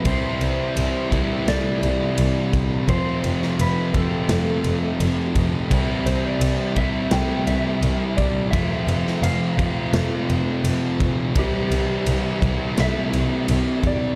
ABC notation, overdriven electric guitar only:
X:1
M:4/4
L:1/8
Q:1/4=85
K:C
V:1 name="Overdriven electric guitar" clef=bass
[C,E,G,CE]3 [C,E,G,CE]4- [C,E,G,CE] | [F,,C,F,A,CF]3 [F,,C,F,A,CF]4- [F,,C,F,A,CF] | [C,E,G,CE]3 [C,E,G,CE]4- [C,E,G,CE] | [F,,C,F,A,CF]3 [F,,C,F,A,CF]4- [F,,C,F,A,CF] |
[C,E,G,CE]3 [C,E,G,CE]4- [C,E,G,CE] |]